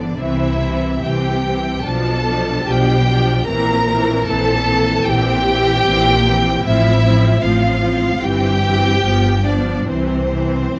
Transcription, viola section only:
Already playing: D3 B3
0.18 E3 C4
0.61 E3 C4
1.04 E3 C4
1.44 E3 C4
1.85 F3 D4
2.26 F3 D4
2.66 F3 D4
3.07 F3 D4
3.47 E3 C4
3.88 E3 C4
4.28 E3 C4
4.67 E3 C4
5.06 E3 C4
5.46 E3 C4
5.85 E3 C4
6.26 E3 C4
6.65 F3 C4
7.04 F3 C4
7.42 F3 C4
7.82 F3 C4
8.22 E3 C4
8.62 E3 C4
9.03 F3 B3
9.45 F3 B3
9.88 E3 C4
10.31 E3 C4
10.75 E3 C4

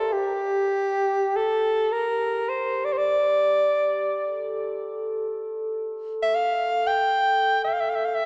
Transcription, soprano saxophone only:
0.00 A4
0.13 G4
1.36 A4
1.92 A#4
2.49 C5
2.85 D5
2.93 C5
2.98 D5
6.23 E5
6.35 F5
6.87 G5
7.64 E5
7.74 F5
7.81 E5
7.90 F5
7.96 E5
8.05 F5
8.15 E5

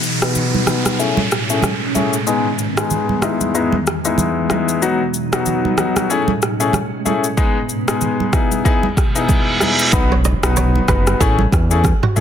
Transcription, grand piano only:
0.22 B3 D#4 F#4 B4
0.67 B3 D#4 F#4 B4
0.99 A3 C#4 E4 G#4
1.50 A3 C#4 E4 G#4
1.95 A3 C#4 E4 G#4
2.27 G#3 B3 D#4 G#4
2.77 G#3 B3 D#4 G#4
3.23 G#3 B3 D#4 E4
3.54 G#3 B3 D#4 E4
4.05 G#3 B3 D#4 E4
4.50 G#3 B3 D#4 E4
4.82 F#3 B3 D#4 F#4
5.32 F#3 B3 D#4 F#4
5.78 F#3 B3 D#4 F#4
6.10 A3 C#4 E4 G#4
6.60 A3 C#4 E4 G#4
7.05 A3 C#4 E4 G#4
7.37 G#3 B3 D#4 G#4
7.88 G#3 B3 D#4 G#4
8.33 B3 D#4 E4 G#4
8.65 B3 D#4 E4 G#4
9.15 B3 D#4 E4 G#4
9.61 B3 D#4 E4 G#4
9.93 B3 D#4 F#4 B4
10.43 B3 D#4 F#4 B4
10.88 B3 D#4 F#4 B4
11.20 A3 C#4 E4 G#4
11.71 A3 C#4 E4 G#4
12.16 A3 C#4 E4 G#4

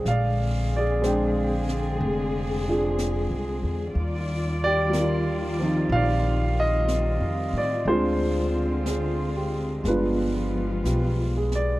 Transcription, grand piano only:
Already playing: G#4
0.08 D5 F5
0.76 G#4 D5
1.02 G#3 C4 D4
1.06 G5
2.67 D4 F4 G#4
4.64 G4 D5
4.89 G3 A#4
5.00 F4
5.59 F3 C4 D#4
5.92 D5 F5
6.60 D#5
7.58 D5
7.87 G#3 C4 D4 F4 C5
8.87 G#4
9.36 G4
9.85 G#3 B3 D4 B4
9.89 F4
10.86 G4
11.37 G#4
11.55 D5

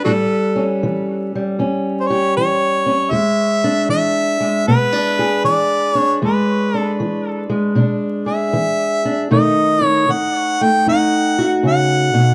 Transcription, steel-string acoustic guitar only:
0.05 A2 G3
0.56 C#4
0.83 E3
1.35 G3
1.59 E2 C#4
2.10 G4
2.37 E3
2.86 C#4
3.11 E2 G#3
3.64 D4
3.89 E3
4.40 G#3
4.68 B2 B3
4.92 D4
5.19 G#4
5.44 E3
5.95 D4
6.22 E2 G#3
6.74 D4
7.00 E3
7.50 G#3
7.75 B2 D4
8.26 G#4
8.53 E3
9.05 D4
9.31 B2 D#3 A3 D#4
9.81 D#4
10.08 D#3
10.61 A3
10.86 F#2 D#4
11.38 F#4
11.63 C#3
12.14 B2

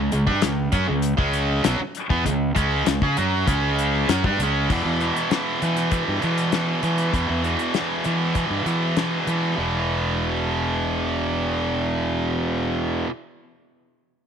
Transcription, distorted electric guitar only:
Already playing: C#3 G#3
0.12 C#3 G#3
0.27 G3 D4
0.42 C#3 G#3
0.73 F#3 C#4
0.88 C#3 G#3
1.17 C#3 G#3 C#4
1.64 B2 F#3
1.80 muted distorted electric guitar stroke
2.10 E3 B3
2.25 C#3 G#3
2.55 C#3 G#3 C#4
2.88 C#3 G#3
3.03 C#4 G#4
3.17 F#3 C#4 F#4
3.47 C#3 G#3 C#4
4.09 F#3 C#4
4.25 G3 D4
4.41 C#3 G#3 C#4
4.70 E2 B2 E3
5.01 E2 B2 E3
5.30 E2 B2 E3
5.62 E2 B2 E3
5.91 E2 B2 E3
6.22 E2 B2 E3
6.52 E2 B2 E3
6.83 E2 B2 E3
7.13 E2 B2 E3
7.43 E2 B2 E3
7.74 E2 B2 E3
8.04 E2 B2 E3
8.35 E2 B2 E3
8.66 E2 B2 E3
8.97 E2 B2 E3
9.27 E2 B2 E3
9.57 E2 B2
9.61 E3

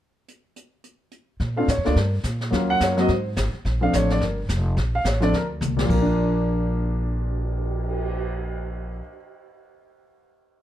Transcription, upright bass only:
1.40 A#2
1.68 A2
1.77 F2
1.87 D2
1.96 G2
2.24 A#2
2.52 D#2
2.80 F#2
3.09 G#2
3.37 G#1
3.53 muted upright bass stroke
3.65 A#1
3.93 A1
4.21 G1
4.49 F1
4.77 A#1
5.05 A1
5.32 D2
5.61 C2
5.89 A#1

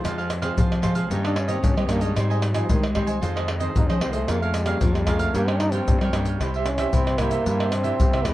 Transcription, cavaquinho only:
0.05 F4 G#4 C5 F5
0.18 G#4 C5 F5
0.30 muted cavaquinho stroke
0.42 G#4 C5 F5
0.57 F4 G#4 C5 F5
0.82 F4 G#4 C5 F5
0.95 G#4 C5 F5
1.11 D#4 G4 C#5 D#5
1.24 G4 C#5 D#5
1.36 muted cavaquinho stroke
1.48 G4 C#5 D#5
1.77 G4 C#5 D#5
1.89 D#4 G4 C#5 D#5
2.01 G4 C#5 D#5
2.16 G4 C5 D#5 G#5
2.30 C5 D#5 G#5
2.42 muted cavaquinho stroke
2.54 C5 D#5 G#5
2.69 G4 C5 D#5 G#5
2.95 G4 C5 D#5 G#5
3.07 C5 D#5 G#5
3.21 F4 G#4 C5 D#5
3.36 G#4 C5 D#5
3.48 muted cavaquinho stroke
3.60 G#4 C5 D#5
3.89 G#4 C5 D#5
4.01 F4 G#4 C5 D#5
4.13 G#4 C5 D#5
4.28 F4 A#4 C#5 F5
4.42 A#4 C#5 F5
4.55 muted cavaquinho stroke
4.67 A#4 C#5 F5
4.82 F4 A#4 C#5 F5
5.07 F4 A#4 C#5 F5
5.19 A#4 C#5 F5
5.35 G4 A#4 C#5 G5
5.49 A#4 C#5 G5
5.61 muted cavaquinho stroke
5.73 A#4 C#5 G5
6.02 A#4 C#5 G5
6.14 G4 A#4 C#5 G5
6.27 A#4 C#5 G5
6.42 E4 G4 C5 E5
6.56 G4 C5 E5
6.79 G4 C5 E5
6.94 E4 G4 C5 E5
7.19 E4 G4 C5 E5
7.31 G4 C5 E5
7.47 E4 G4 C5 E5
7.61 G4 C5 E5
7.83 G4 C5 E5
8.14 G4 C5 E5
8.25 E4 G4 C5 E5

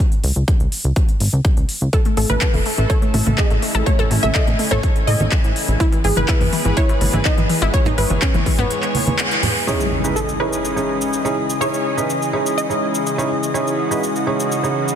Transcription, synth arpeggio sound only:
1.93 A4
2.06 A3
2.17 A3
2.30 A3
2.42 A4
2.54 A3
2.66 A3
2.78 A3
2.90 A4
3.02 A3
3.14 A3
3.26 A3
3.38 G#4
3.51 A3
3.62 A3
3.75 A4
3.87 A3
3.99 A4
4.11 A3
4.23 A3
4.35 A4
4.47 A3
4.59 A3
4.72 A4
5.80 E4
5.92 E3
6.04 E3
6.17 E3
6.28 E4
6.41 E3
6.53 E3
6.65 E3
6.77 E4
6.89 E3
7.01 E3
7.14 E3
7.25 D#4
7.38 E3
7.50 E3
7.62 E4
7.74 E3
7.86 D#4
7.98 E3
8.10 E3
8.22 C#4
8.34 E3
8.46 E3
8.59 B3

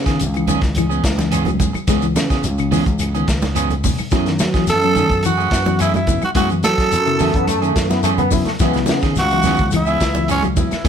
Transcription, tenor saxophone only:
4.70 A4
5.26 F#4
5.81 E4
5.96 E4
6.24 F#4
6.37 F#4
6.64 A4
9.19 F#4
9.76 E4
10.31 C#4
10.61 E4

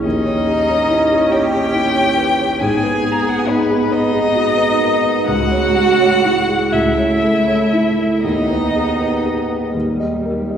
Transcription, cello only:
0.04 D#4
1.32 G4
2.62 G#4
3.47 B3
3.91 D#4
5.29 F#4
6.73 E4
8.24 D#4

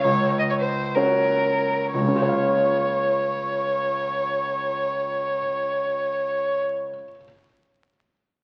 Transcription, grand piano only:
0.04 C#2
0.96 C#4 F#4 C#5
1.94 C#2
2.01 C#3
2.08 C#4
2.15 F4
2.22 C#5
2.29 F5

